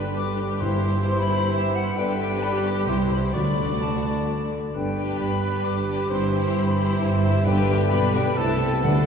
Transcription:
Already playing: G1 G2 D3 B3 D4 G4 B4
0.14 D4 D6
0.38 G4
0.60 G2 E3 C4 E4 C5 C6
1.06 C4 C6
1.19 B5
1.29 G4
1.51 E4 E5
1.74 F#5
1.96 G1 G2 D3 B3 D4 G4 B4 G5
2.20 G4
2.42 B3 B5
2.66 D6
2.87 C2 C3 E3 G3 E4 C5 C6
3.10 E4 G4 B5
3.33 D2 D3 F#3 D4 F#4 D5 B5
3.58 A4
3.80 D4 A5
4.05 A4
4.28 F#4
4.51 A4
4.73 G1 G2 B3 D4 G4 B4 G5
4.96 D4 G4 B4
5.19 G1 G2 B3 B5
5.42 D4 G4 B4
5.64 G1 G2 D4 D6
5.86 D4 G4 B4
6.10 G1 G2 E3 C4 E4 G4 C5 C6
6.32 E4 G4 C5
6.55 G1 G2 C4 C6
6.66 B5
6.78 E4 G4 C5
6.99 G1 G2 E4 E5
7.23 E4 G4 C5
7.45 G1 G2 D3 B3 D4 G4 B4 G5
7.69 B4
7.89 B1 B2 B3 D4 G4 B4 B5
8.13 F#4 G5
8.36 C2 C3 A3 E4 A4 A5
8.60 E4 A4
8.82 D2 D3 A3 D4 A4 F#5
8.86 A3

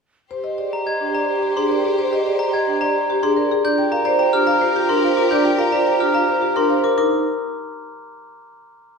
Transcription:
0.31 G4 C5
0.44 D#5
0.58 G#4 D5
0.73 A#5
0.86 D#5 G#6
1.01 D4
1.14 D5 A#5
1.42 G4
1.56 D4 G#4 C6
1.70 A#4 D5
1.85 G#4
1.99 C5
2.13 D#5
2.25 G#4 D5
2.39 A#5
2.53 D#5 G#6
2.67 D4
2.81 D5 A#5
3.10 G4
3.22 D4 G#4 C6
3.36 A#4 D5
3.52 G#4
3.64 D4 F4 G4 A#4 D5 G6
3.78 G5
3.92 A#4 F5 A#5
4.05 C5 D5 A#5
4.19 G5 A#5
4.33 D4 G4 F6
4.47 F5 A#5
4.61 C5
4.76 G4
4.89 D4 A#4 C6
5.03 C5 F5
5.17 A#4 D6
5.31 D4 D5 G6
5.45 G5
5.59 A#4 F5 A#5
5.72 C5 D5 A#5
5.87 G5 A#5
6.00 D4 G4 F6
6.14 F5 A#5
6.28 C5
6.42 G4
6.56 D4 A#4 C6
6.70 C5 F5
6.84 A#4 D6
6.98 D#4 A#4 D6

